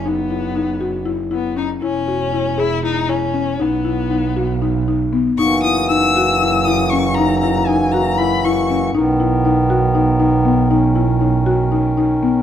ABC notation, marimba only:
X:1
M:7/8
L:1/8
Q:1/4=118
K:F#mix
V:1 name="Marimba"
D E D F E E C | E F E G E E C | D E D F D D B, | D E D F E E C |
D E D F E E C | D E D F D D B, | D E D F D D B, |]